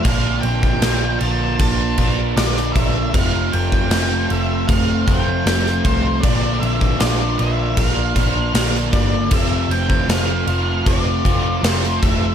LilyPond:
<<
  \new Staff \with { instrumentName = "Lead electric guitar" } { \time 4/4 \key f \major \tempo 4 = 78 f''8 g''4 a''8 a''4 d''8 e''8 | f''8 g''4 e''8 f''8 g''4 c''8 | d''8 e''8 d''8 e''8 f''4. d''8 | e''8 g''8 f''4 d''4 c''8 e''8 | }
  \new Staff \with { instrumentName = "Overdriven electric guitar" } { \time 4/4 \key f \major <bes, d bes d' f'>8 <bes d' f'>8 <d bes d' f'>8 <bes d' f'>4 <bes d' f'>8 <d bes d' f'>4 | <f, c f a c' f'>8 <f a c' f'>8 <f a c' f'>8 <f a c' f'>4 <f a c' f'>8 <f a c' f'>4 | <bes, d bes d' f'>8 <bes d' f'>8 <d bes d' f'>8 <bes d' f'>4 <bes d' f'>8 <d bes d' f'>4 | <f, c f a c' f'>8 <f a c' f'>8 <f a c' f'>8 <f a c' f'>4 <f a c' f'>8 <f a c' f'>4 | }
  \new Staff \with { instrumentName = "Picked electric bass" } { \clef bass \time 4/4 \key f \major bes,,8 bes,,8 bes,,8 bes,,8 bes,,8 bes,,8 bes,,8 bes,,8 | f,,8 f,,8 f,,8 f,,8 f,,8 f,,8 f,,8 c,8 | bes,,8 bes,,8 bes,,8 bes,,8 bes,,8 bes,,8 bes,,8 g,,8 | f,,8 f,,8 f,,8 f,,8 f,,8 f,,8 f,,8 f,,8 | }
  \new DrumStaff \with { instrumentName = "Drums" } \drummode { \time 4/4 <cymc bd>8 cymc16 bd16 <cymc sn>8 cymc8 <cymc bd>8 <cymc bd>8 <cymc sn>16 sn16 <cymc bd>8 | <cymc bd>8 cymc16 bd16 <cymc sn>8 cymc8 <cymc bd>8 <cymc bd>8 <cymc sn>16 sn16 <cymc bd>8 | <cymc bd>8 cymc16 bd16 <cymc sn>8 cymc8 <cymc bd>8 <cymc bd>8 <cymc sn>16 sn16 <cymc bd>8 | <cymc bd>8 cymc16 bd16 <cymc sn>8 cymc8 <cymc bd>8 <cymc bd>8 <cymc sn>16 sn16 <cymc bd>8 | }
>>